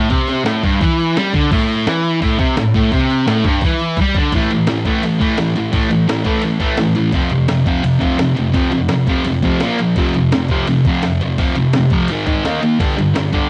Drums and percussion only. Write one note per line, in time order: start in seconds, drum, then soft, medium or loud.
0.10 kick loud
0.10 open hi-hat medium
0.28 snare soft
0.28 open hi-hat medium
0.46 snare loud
0.46 open hi-hat medium
0.64 kick loud
0.64 open hi-hat medium
0.81 kick loud
0.81 open hi-hat medium
1.00 open hi-hat medium
1.16 snare loud
1.16 open hi-hat medium
1.34 kick loud
1.34 open hi-hat medium
1.51 kick loud
1.51 crash medium
1.69 open hi-hat medium
1.87 snare loud
1.87 open hi-hat medium
2.04 open hi-hat medium
2.22 kick loud
2.22 open hi-hat medium
2.39 kick loud
2.39 open hi-hat medium
2.57 snare loud
2.57 open hi-hat medium
2.74 kick loud
2.74 open hi-hat medium
2.92 kick loud
2.92 open hi-hat medium
3.10 open hi-hat medium
3.27 snare loud
3.27 open hi-hat medium
3.44 kick loud
3.44 open hi-hat medium
3.61 kick loud
3.61 open hi-hat medium
3.79 open hi-hat medium
3.97 kick loud
3.97 open hi-hat medium
4.14 kick loud
4.14 open hi-hat medium
4.32 kick loud
4.32 ride medium
4.50 ride medium
4.67 snare loud
4.67 ride medium
4.85 kick medium
4.85 ride medium
5.03 ride medium
5.20 kick medium
5.20 ride medium
5.37 snare loud
5.37 ride medium
5.56 ride medium
5.73 kick loud
5.73 ride medium
5.91 ride medium
6.09 snare loud
6.09 ride medium
6.25 kick medium
6.25 ride medium
6.42 ride medium
6.60 kick medium
6.60 ride medium
6.77 snare loud
6.77 ride medium
6.95 ride medium
7.12 kick loud
7.12 ride medium
7.29 ride medium
7.48 snare loud
7.48 ride loud
7.66 kick medium
7.66 ride medium
7.84 ride medium
8.01 kick medium
8.01 ride medium
8.19 snare loud
8.19 ride medium
8.37 ride medium
8.54 kick loud
8.54 ride medium
8.72 ride medium
8.89 snare loud
8.89 ride medium
9.07 kick medium
9.07 ride medium
9.25 ride medium
9.43 kick medium
9.43 ride medium
9.60 snare loud
9.60 ride medium
9.79 ride medium
9.96 kick loud
9.96 ride medium
10.14 ride medium
10.32 snare loud
10.32 ride medium
10.48 kick medium
10.48 ride medium
10.67 ride medium
10.85 kick medium
10.85 ride medium
11.03 snare medium
11.03 ride medium
11.21 ride medium
11.38 kick loud
11.38 ride medium
11.55 ride medium
11.73 snare loud
11.73 ride medium
11.90 kick medium
11.90 ride medium
12.08 ride loud
12.27 kick medium
12.27 ride medium
12.45 snare loud
12.45 ride medium
12.62 ride medium
12.80 kick loud
12.80 ride loud
12.98 ride medium
13.15 snare loud
13.15 ride medium
13.33 kick medium
13.33 ride medium